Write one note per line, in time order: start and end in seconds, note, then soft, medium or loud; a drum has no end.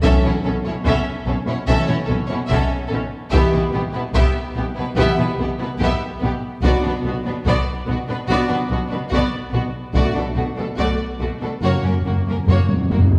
0.02 0.12 B1 medium
0.02 1.23 B2 medium
0.02 0.12 B2 medium
0.02 0.33 C#4 medium
0.02 0.22 C#4 medium
0.02 0.34 A4 medium
0.02 0.23 A4 medium
0.02 0.23 E5 medium
0.02 taiko medium
0.06 0.35 E3 medium
0.06 0.36 A3 medium
0.24 0.32 B2 soft
0.24 0.32 C#4 soft
0.24 0.33 E4 soft
0.24 0.32 C#5 soft
0.45 0.53 B1 medium
0.45 0.53 B2 medium
0.45 0.53 C#4 soft
0.45 0.53 A4 soft
0.65 0.74 B2 soft
0.65 0.73 C#4 soft
0.65 0.74 E4 soft
0.65 0.73 C#5 soft
0.86 0.94 B1 medium
0.86 0.94 B2 medium
0.86 1.05 C#4 medium
0.86 1.05 A4 medium
0.86 1.05 E5 medium
0.86 taiko medium
1.26 1.35 B1 medium
1.26 1.34 B2 soft
1.26 1.35 C#4 soft
1.26 1.36 C#4 medium
1.26 1.35 A4 soft
1.47 1.55 B2 medium
1.47 1.57 C#4 soft
1.47 1.55 E4 medium
1.47 1.57 C#5 soft
1.67 1.76 B1 medium
1.67 1.77 B2 medium
1.67 1.99 E3 medium
1.67 1.99 A3 medium
1.67 1.87 C#4 medium
1.67 1.99 C#4 medium
1.67 1.87 A4 medium
1.67 1.99 A4 medium
1.67 1.87 E5 medium
1.87 1.97 B2 medium
1.87 1.97 C#4 medium
1.87 1.96 E4 medium
1.87 1.95 C#5 medium
2.06 2.17 B1 medium
2.06 2.18 B2 soft
2.06 2.17 C#4 soft
2.06 2.18 C#4 soft
2.06 2.15 A4 soft
2.27 2.39 B2 medium
2.27 2.39 C#4 soft
2.27 2.38 E4 soft
2.27 2.35 C#5 medium
2.46 2.58 B1 medium
2.46 2.67 E5 medium
2.51 2.60 B2 medium
2.51 2.70 C#4 medium
2.51 2.71 A4 medium
2.51 taiko medium
2.88 3.00 B1 medium
2.88 3.00 B2 soft
2.88 2.98 C#4 medium
2.88 2.96 A4 medium
2.93 3.01 C#4 medium
3.31 3.40 B1 medium
3.31 3.41 B2 medium
3.31 3.63 E3 medium
3.31 3.51 B3 medium
3.31 3.63 B3 medium
3.31 3.62 G4 medium
3.31 3.51 G4 medium
3.31 3.51 E5 medium
3.31 taiko medium
3.52 3.62 B2 medium
3.52 3.62 B3 soft
3.52 3.62 E4 soft
3.52 3.60 B4 soft
3.72 3.81 B1 soft
3.72 3.82 B2 medium
3.72 3.80 B3 medium
3.72 3.81 B3 soft
3.72 3.81 G4 medium
3.93 4.03 B2 soft
3.93 4.02 B3 soft
3.93 4.02 E4 soft
3.93 4.01 B4 soft
4.14 4.22 B1 medium
4.14 4.24 B2 medium
4.14 4.34 B3 medium
4.14 4.35 G4 medium
4.14 4.34 E5 medium
4.14 taiko medium
4.55 4.63 B1 soft
4.55 4.66 B2 soft
4.55 4.63 B3 soft
4.55 4.64 B3 medium
4.55 4.65 G4 soft
4.76 4.86 B2 medium
4.76 4.84 B3 soft
4.76 4.84 E4 medium
4.76 4.87 B4 soft
4.96 5.04 B1 medium
4.96 5.07 B2 medium
4.96 5.28 E3 medium
4.96 5.16 B3 medium
4.96 5.29 B3 medium
4.96 5.16 G4 medium
4.96 5.29 G4 medium
5.00 5.18 E5 medium
5.16 5.27 B2 soft
5.16 5.25 B3 soft
5.16 5.24 E4 soft
5.21 5.29 B4 medium
5.38 5.46 B1 medium
5.38 5.48 B2 medium
5.38 5.46 B3 soft
5.38 5.47 B3 soft
5.38 5.49 G4 medium
5.59 5.68 B2 medium
5.59 5.68 B3 soft
5.59 5.67 E4 soft
5.63 5.71 B4 soft
5.78 5.88 B1 medium
5.78 5.89 B2 medium
5.78 6.00 B3 medium
5.78 5.98 G4 medium
5.78 taiko medium
5.83 6.01 E5 medium
6.20 6.29 B1 soft
6.20 6.31 B2 soft
6.20 6.28 B3 medium
6.20 6.31 B3 medium
6.26 6.33 G4 medium
6.62 6.70 B1 medium
6.62 6.72 B2 medium
6.62 6.94 F#3 medium
6.62 6.82 B3 medium
6.62 6.94 B3 medium
6.62 6.94 D4 medium
6.62 6.82 F#4 medium
6.62 6.93 F#4 medium
6.62 6.83 D5 medium
6.62 taiko medium
6.82 6.93 B2 soft
6.82 6.92 B3 soft
6.82 6.90 D4 soft
6.87 6.94 B4 soft
7.04 7.13 B1 medium
7.04 7.13 B2 soft
7.04 7.12 B3 soft
7.04 7.13 B3 soft
7.08 7.16 F#4 soft
7.25 7.35 B2 soft
7.25 7.33 B3 soft
7.25 7.33 D4 soft
7.25 7.35 B4 soft
7.45 7.54 B1 medium
7.45 7.55 B2 medium
7.45 7.65 B3 medium
7.45 7.64 F#4 medium
7.45 7.66 D5 medium
7.45 taiko medium
7.87 7.95 B1 soft
7.87 7.96 B2 soft
7.87 7.95 B3 soft
7.91 7.99 F#4 soft
8.07 8.17 B2 soft
8.07 8.17 B3 soft
8.07 8.15 D4 soft
8.07 8.18 B4 medium
8.27 8.36 B1 medium
8.27 8.38 B2 medium
8.27 8.60 F#3 medium
8.27 8.48 B3 medium
8.27 8.60 B3 medium
8.27 8.60 D4 medium
8.27 8.47 F#4 medium
8.27 8.60 F#4 medium
8.31 8.49 D5 medium
8.48 8.58 B2 soft
8.48 8.58 B3 soft
8.48 8.56 D4 soft
8.52 8.60 B4 soft
8.67 8.78 B1 soft
8.67 8.79 B2 soft
8.67 8.75 B3 soft
8.67 8.79 B3 soft
8.71 8.79 F#4 soft
8.88 9.00 B2 soft
8.88 8.96 D4 soft
8.88 8.99 B4 soft
8.92 9.00 B3 soft
9.09 9.19 B1 medium
9.09 9.21 B2 medium
9.09 9.31 B3 medium
9.09 9.30 F#4 medium
9.09 taiko medium
9.14 9.32 D5 medium
9.50 9.61 B1 soft
9.50 9.62 B2 soft
9.50 9.58 B3 soft
9.50 9.62 B3 soft
9.50 9.61 F#4 soft
9.94 10.02 B1 medium
9.94 11.16 B2 medium
9.94 10.04 B2 medium
9.94 10.26 F#3 soft
9.94 10.14 A3 medium
9.94 10.26 A3 soft
9.94 10.25 D4 medium
9.94 10.25 F#4 medium
9.94 10.14 F#4 medium
9.94 10.14 D5 medium
9.94 taiko medium
10.14 10.24 B2 soft
10.14 10.24 A3 soft
10.14 10.22 D4 soft
10.14 10.25 A4 soft
10.34 10.44 B1 soft
10.34 10.45 B2 soft
10.34 10.42 A3 soft
10.34 10.44 A3 soft
10.34 10.45 F#4 soft
10.56 10.66 B2 soft
10.56 10.65 A3 soft
10.56 10.64 D4 soft
10.56 10.67 A4 soft
10.77 10.86 B1 medium
10.77 10.86 B2 medium
10.77 10.97 A3 medium
10.77 10.97 F#4 medium
10.77 10.98 D5 medium
10.77 taiko medium
11.20 11.28 B1 soft
11.20 11.29 B2 soft
11.20 11.28 A3 soft
11.20 11.29 A3 soft
11.20 11.28 F#4 soft
11.41 11.50 B2 soft
11.41 11.50 A3 soft
11.41 11.49 D4 soft
11.41 11.51 A4 soft
11.62 11.70 F#1 medium
11.62 11.69 F#2 soft
11.62 11.72 F#2 medium
11.62 11.95 F#3 soft
11.62 11.83 A#3 soft
11.62 11.96 A#3 soft
11.62 11.95 C#4 soft
11.62 11.82 F#4 medium
11.62 11.95 F#4 soft
11.62 11.83 C#5 medium
11.70 11.77 F#2 soft
11.78 11.83 F#2 soft
11.84 11.92 F#2 soft
11.84 11.91 F#2 soft
11.84 11.93 A#3 soft
11.84 11.92 C#4 soft
11.84 11.93 A#4 soft
11.93 11.99 F#2 soft
12.00 12.07 F#2 soft
12.05 12.14 F#1 soft
12.05 12.15 F#2 soft
12.05 12.13 F#2 soft
12.05 12.13 A#3 soft
12.05 12.14 A#3 soft
12.05 12.15 F#4 soft
12.15 12.22 F#2 soft
12.23 12.29 F#2 soft
12.27 12.35 F#2 soft
12.27 12.36 F#2 soft
12.27 12.36 A#3 soft
12.27 12.37 C#4 soft
12.27 12.37 A#4 soft
12.38 12.44 F#2 soft
12.46 12.56 F#1 medium
12.46 12.53 F#2 soft
12.46 12.55 F#2 medium
12.46 12.69 A#3 soft
12.46 12.68 C#5 medium
12.46 taiko low-mid medium
12.50 12.60 F#2 soft
12.50 12.69 F#4 soft
12.61 12.68 F#2 soft
12.69 12.75 F#2 medium
12.69 taiko high medium
12.76 12.82 F#2 medium
12.83 12.90 F#2 medium
12.90 12.98 F#1 soft
12.90 12.99 F#2 soft
12.90 12.98 F#2 medium
12.90 12.99 A#3 soft
12.90 13.01 A#3 soft
12.90 13.00 F#4 soft
12.90 taiko high medium
12.99 13.06 F#2 medium
13.08 13.14 F#2 medium
13.08 taiko low medium
13.15 13.19 F#2 medium